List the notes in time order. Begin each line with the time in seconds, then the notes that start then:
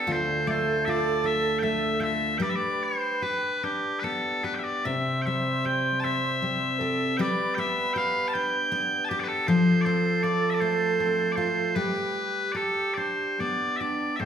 Already playing: B3 D4 A4
0.07 D2 F4 A4
0.12 C5
0.47 A3 C5 D5
0.85 F4 E5
0.89 D5
1.24 D4 E5
1.59 E5 G5
1.63 A3
1.99 F4 A4 G5
2.03 E5
2.38 G3 G4 B4 G5
2.42 D5
2.49 E5
2.55 D5
2.83 C5
3.22 G4 B4
3.63 D4 G4
3.99 B4
4.04 B3 A4
4.44 G4 B4
4.55 G5
4.59 E5
4.64 D5
4.85 C3 G4 C5 E5
5.22 G5
5.26 G3 E5
5.65 G4 G5
6.00 A5
6.04 C4 E5
6.42 G3
6.79 G4 A4
7.17 G3 G4 B4 D5 G5
7.55 B3 G5
7.59 E5
7.93 G4 G5
7.97 F5
8.28 A5
8.33 D4 G5
8.72 B3
9.05 A5
9.09 G4
9.20 D5
9.24 A4 B4
9.47 F3 F4 A4 C5
9.81 C5 D5
9.86 C4
10.23 F4 D5
10.50 E5
10.54 D5
10.60 A3 C5
11.00 C4
11.32 C5 D5
11.37 F4
11.75 G3 G4 B4
12.52 G4 D5
12.56 A4
12.94 D4 C5 D5
13.40 B3 D5
13.76 D4 D5 E5
13.81 G4
14.16 A2 A4 C5 E5